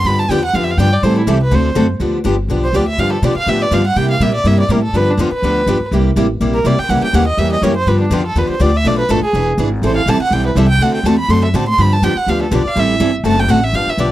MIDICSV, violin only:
0, 0, Header, 1, 2, 480
1, 0, Start_track
1, 0, Tempo, 244300
1, 98, Time_signature, 4, 2, 24, 8
1, 27739, End_track
2, 0, Start_track
2, 0, Title_t, "Violin"
2, 0, Program_c, 0, 40
2, 117, Note_on_c, 0, 83, 94
2, 366, Note_on_c, 0, 81, 86
2, 395, Note_off_c, 0, 83, 0
2, 593, Note_on_c, 0, 79, 93
2, 622, Note_off_c, 0, 81, 0
2, 846, Note_off_c, 0, 79, 0
2, 877, Note_on_c, 0, 78, 94
2, 1067, Note_on_c, 0, 77, 85
2, 1097, Note_off_c, 0, 78, 0
2, 1244, Note_on_c, 0, 76, 80
2, 1273, Note_off_c, 0, 77, 0
2, 1387, Note_on_c, 0, 77, 76
2, 1416, Note_off_c, 0, 76, 0
2, 1527, Note_on_c, 0, 79, 103
2, 1556, Note_off_c, 0, 77, 0
2, 1823, Note_on_c, 0, 74, 87
2, 1853, Note_off_c, 0, 79, 0
2, 2026, Note_on_c, 0, 72, 87
2, 2055, Note_off_c, 0, 74, 0
2, 2282, Note_off_c, 0, 72, 0
2, 2331, Note_on_c, 0, 64, 46
2, 2531, Note_on_c, 0, 67, 81
2, 2561, Note_off_c, 0, 64, 0
2, 2774, Note_off_c, 0, 67, 0
2, 2813, Note_on_c, 0, 71, 81
2, 3036, Note_on_c, 0, 72, 87
2, 3066, Note_off_c, 0, 71, 0
2, 3485, Note_off_c, 0, 72, 0
2, 5188, Note_on_c, 0, 72, 85
2, 5415, Note_on_c, 0, 74, 72
2, 5445, Note_off_c, 0, 72, 0
2, 5655, Note_off_c, 0, 74, 0
2, 5663, Note_on_c, 0, 76, 87
2, 5881, Note_on_c, 0, 77, 87
2, 5910, Note_off_c, 0, 76, 0
2, 6127, Note_off_c, 0, 77, 0
2, 6142, Note_on_c, 0, 69, 49
2, 6371, Note_on_c, 0, 74, 81
2, 6401, Note_off_c, 0, 69, 0
2, 6613, Note_off_c, 0, 74, 0
2, 6625, Note_on_c, 0, 77, 104
2, 6846, Note_on_c, 0, 76, 89
2, 6875, Note_off_c, 0, 77, 0
2, 7110, Note_on_c, 0, 74, 95
2, 7140, Note_off_c, 0, 76, 0
2, 7343, Note_on_c, 0, 77, 79
2, 7372, Note_off_c, 0, 74, 0
2, 7578, Note_off_c, 0, 77, 0
2, 7597, Note_on_c, 0, 78, 85
2, 7788, Note_on_c, 0, 79, 98
2, 7818, Note_off_c, 0, 78, 0
2, 8041, Note_off_c, 0, 79, 0
2, 8072, Note_on_c, 0, 77, 81
2, 8300, Note_on_c, 0, 76, 78
2, 8330, Note_off_c, 0, 77, 0
2, 8525, Note_off_c, 0, 76, 0
2, 8537, Note_on_c, 0, 74, 86
2, 8783, Note_on_c, 0, 76, 83
2, 8812, Note_off_c, 0, 74, 0
2, 9018, Note_off_c, 0, 76, 0
2, 9037, Note_on_c, 0, 74, 82
2, 9253, Note_on_c, 0, 70, 70
2, 9283, Note_off_c, 0, 74, 0
2, 9493, Note_off_c, 0, 70, 0
2, 9504, Note_on_c, 0, 69, 80
2, 9755, Note_on_c, 0, 71, 93
2, 9784, Note_off_c, 0, 69, 0
2, 10028, Note_on_c, 0, 62, 61
2, 10057, Note_off_c, 0, 71, 0
2, 10228, Note_on_c, 0, 65, 73
2, 10258, Note_off_c, 0, 62, 0
2, 10460, Note_off_c, 0, 65, 0
2, 10473, Note_on_c, 0, 71, 90
2, 11553, Note_off_c, 0, 71, 0
2, 12851, Note_on_c, 0, 70, 82
2, 13095, Note_on_c, 0, 74, 81
2, 13124, Note_off_c, 0, 70, 0
2, 13335, Note_on_c, 0, 79, 103
2, 13364, Note_off_c, 0, 74, 0
2, 13550, Note_on_c, 0, 78, 92
2, 13580, Note_off_c, 0, 79, 0
2, 13802, Note_off_c, 0, 78, 0
2, 13835, Note_on_c, 0, 79, 92
2, 14041, Note_on_c, 0, 78, 88
2, 14071, Note_off_c, 0, 79, 0
2, 14278, Note_off_c, 0, 78, 0
2, 14290, Note_on_c, 0, 75, 90
2, 14507, Note_on_c, 0, 76, 90
2, 14537, Note_off_c, 0, 75, 0
2, 14761, Note_off_c, 0, 76, 0
2, 14783, Note_on_c, 0, 75, 78
2, 14988, Note_on_c, 0, 73, 78
2, 15018, Note_off_c, 0, 75, 0
2, 15242, Note_off_c, 0, 73, 0
2, 15253, Note_on_c, 0, 72, 95
2, 15477, Note_on_c, 0, 71, 84
2, 15507, Note_off_c, 0, 72, 0
2, 15727, Note_off_c, 0, 71, 0
2, 15736, Note_on_c, 0, 62, 65
2, 15975, Note_on_c, 0, 65, 77
2, 16004, Note_off_c, 0, 62, 0
2, 16215, Note_off_c, 0, 65, 0
2, 16234, Note_on_c, 0, 69, 89
2, 16464, Note_on_c, 0, 71, 75
2, 16493, Note_off_c, 0, 69, 0
2, 16689, Note_off_c, 0, 71, 0
2, 16701, Note_on_c, 0, 72, 78
2, 16922, Note_on_c, 0, 74, 81
2, 16951, Note_off_c, 0, 72, 0
2, 17207, Note_on_c, 0, 76, 104
2, 17237, Note_off_c, 0, 74, 0
2, 17428, Note_on_c, 0, 74, 89
2, 17457, Note_off_c, 0, 76, 0
2, 17645, Note_off_c, 0, 74, 0
2, 17657, Note_on_c, 0, 71, 85
2, 17895, Note_on_c, 0, 69, 82
2, 17924, Note_off_c, 0, 71, 0
2, 18136, Note_off_c, 0, 69, 0
2, 18156, Note_on_c, 0, 68, 81
2, 18585, Note_off_c, 0, 68, 0
2, 19369, Note_on_c, 0, 72, 83
2, 19567, Note_off_c, 0, 72, 0
2, 19579, Note_on_c, 0, 77, 86
2, 19826, Note_on_c, 0, 81, 99
2, 19855, Note_off_c, 0, 77, 0
2, 20063, Note_off_c, 0, 81, 0
2, 20086, Note_on_c, 0, 78, 92
2, 20294, Note_on_c, 0, 79, 90
2, 20324, Note_off_c, 0, 78, 0
2, 20537, Note_off_c, 0, 79, 0
2, 20560, Note_on_c, 0, 71, 52
2, 20763, Note_on_c, 0, 76, 72
2, 20792, Note_off_c, 0, 71, 0
2, 20985, Note_off_c, 0, 76, 0
2, 20997, Note_on_c, 0, 79, 117
2, 21251, Note_on_c, 0, 78, 98
2, 21281, Note_off_c, 0, 79, 0
2, 21491, Note_off_c, 0, 78, 0
2, 21503, Note_on_c, 0, 79, 85
2, 21731, Note_on_c, 0, 81, 87
2, 21760, Note_off_c, 0, 79, 0
2, 21971, Note_off_c, 0, 81, 0
2, 21983, Note_on_c, 0, 83, 98
2, 22206, Note_on_c, 0, 84, 102
2, 22235, Note_off_c, 0, 83, 0
2, 22453, Note_off_c, 0, 84, 0
2, 22491, Note_on_c, 0, 76, 53
2, 22700, Note_on_c, 0, 81, 82
2, 22730, Note_off_c, 0, 76, 0
2, 22941, Note_off_c, 0, 81, 0
2, 22962, Note_on_c, 0, 84, 108
2, 23194, Note_on_c, 0, 83, 92
2, 23224, Note_off_c, 0, 84, 0
2, 23436, Note_on_c, 0, 81, 95
2, 23466, Note_off_c, 0, 83, 0
2, 23650, Note_on_c, 0, 79, 84
2, 23679, Note_off_c, 0, 81, 0
2, 23906, Note_on_c, 0, 78, 97
2, 23935, Note_off_c, 0, 79, 0
2, 24148, Note_on_c, 0, 77, 83
2, 24177, Note_off_c, 0, 78, 0
2, 24385, Note_off_c, 0, 77, 0
2, 24414, Note_on_c, 0, 69, 49
2, 24657, Note_on_c, 0, 74, 82
2, 24687, Note_off_c, 0, 69, 0
2, 24910, Note_on_c, 0, 77, 106
2, 24940, Note_off_c, 0, 74, 0
2, 25126, Note_on_c, 0, 76, 96
2, 25156, Note_off_c, 0, 77, 0
2, 25834, Note_off_c, 0, 76, 0
2, 26057, Note_on_c, 0, 81, 89
2, 26319, Note_on_c, 0, 79, 99
2, 26349, Note_off_c, 0, 81, 0
2, 26526, Note_on_c, 0, 78, 86
2, 26555, Note_off_c, 0, 79, 0
2, 26794, Note_on_c, 0, 76, 98
2, 26824, Note_off_c, 0, 78, 0
2, 27020, Note_on_c, 0, 77, 97
2, 27049, Note_off_c, 0, 76, 0
2, 27295, Note_on_c, 0, 76, 89
2, 27325, Note_off_c, 0, 77, 0
2, 27506, Note_on_c, 0, 74, 81
2, 27535, Note_off_c, 0, 76, 0
2, 27739, Note_off_c, 0, 74, 0
2, 27739, End_track
0, 0, End_of_file